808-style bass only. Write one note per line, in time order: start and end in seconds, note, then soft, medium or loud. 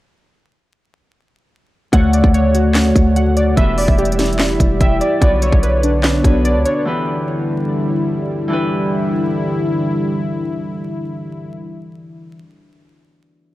1.93 2.22 D2 loud
2.24 2.93 D2 loud
2.96 3.55 D2 loud
3.57 3.87 E1 loud
3.88 4.57 E1 loud
4.60 4.80 E1 loud
4.81 5.00 E1 loud
5.22 5.51 B1 loud
5.52 6.22 B1 loud
6.24 6.57 B1 loud
6.55 6.65 C#2 loud